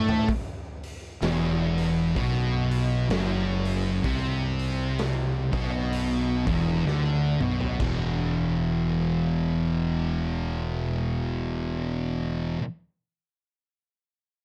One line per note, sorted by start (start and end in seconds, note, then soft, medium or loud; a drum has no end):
0.00 0.25 A2 loud
0.00 0.27 A3 loud
0.00 0.24 D4 medium
0.00 0.23 A4 medium
0.00 0.23 E5 medium
0.09 floor tom medium
0.28 kick loud
0.28 open hi-hat medium
0.83 open hi-hat medium
1.22 2.12 E1 loud
1.22 2.14 E2 loud
1.22 snare loud
1.22 open hi-hat medium
1.78 open hi-hat medium
2.16 3.06 B1 medium
2.16 3.08 B2 loud
2.16 kick loud
2.16 open hi-hat medium
2.71 open hi-hat medium
3.09 3.99 F#1 medium
3.09 4.03 F#2 loud
3.09 snare loud
3.09 open hi-hat medium
3.65 open hi-hat medium
4.04 5.49 C2 medium
4.04 5.51 C3 loud
4.04 kick loud
4.04 open hi-hat medium
4.59 open hi-hat soft
4.99 snare loud
4.99 open hi-hat medium
5.52 6.43 B1 medium
5.52 6.45 B2 loud
5.52 kick loud
5.52 open hi-hat soft
5.93 open hi-hat medium
6.46 6.84 E1 medium
6.46 6.85 E2 medium
6.46 kick loud
6.46 open hi-hat medium
6.85 7.37 D2 medium
6.85 7.39 D3 medium
6.85 snare medium
7.41 7.77 B1 medium
7.41 7.79 B2 medium
7.41 mid tom medium
7.61 floor tom medium
7.80 12.56 E1 medium
7.80 12.59 E2 medium
7.80 12.61 B2 medium
7.80 kick medium
7.80 crash medium
7.84 12.63 E3 loud